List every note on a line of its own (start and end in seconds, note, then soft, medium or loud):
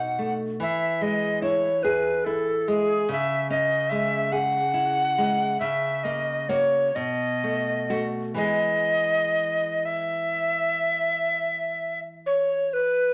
0.00 0.58 B2 medium
0.00 0.45 D#4 medium
0.00 0.33 F#5 medium
0.19 0.61 A3 soft
0.60 3.05 E3 medium
0.60 1.04 E5 medium
1.01 1.67 G#3 medium
1.01 1.42 D#5 medium
1.42 2.09 E4 medium
1.42 1.84 C#5 medium
1.83 2.52 G#4 medium
1.83 2.26 B4 medium
2.25 2.93 E4 soft
2.25 2.70 A4 medium
2.68 3.10 G#3 medium
2.68 3.10 G#4 medium
3.09 5.56 C#3 medium
3.09 3.50 E5 medium
3.50 4.16 C#4 medium
3.50 3.91 D#5 medium
3.90 4.58 G#3 soft
3.90 4.34 E5 medium
4.32 5.01 G#4 medium
4.32 5.60 F#5 loud
4.74 5.43 E4 medium
5.18 5.61 G#3 medium
5.60 6.91 C#3 medium
5.60 6.05 E5 medium
6.04 6.48 A#3 soft
6.04 6.51 D#5 medium
6.49 6.91 A#3 soft
6.49 6.91 F#4 medium
6.49 6.97 C#5 medium
6.95 8.35 B2 medium
6.95 8.07 D#5 loud
7.43 7.89 A3 soft
7.90 8.35 A3 soft
7.90 8.34 F#4 medium
8.34 13.14 E3 medium
8.34 13.14 G#3 soft
8.34 13.14 G#4 soft
8.34 9.87 D#5 loud
9.85 12.00 E5 medium
12.26 12.75 C#5 medium
12.73 13.14 B4 medium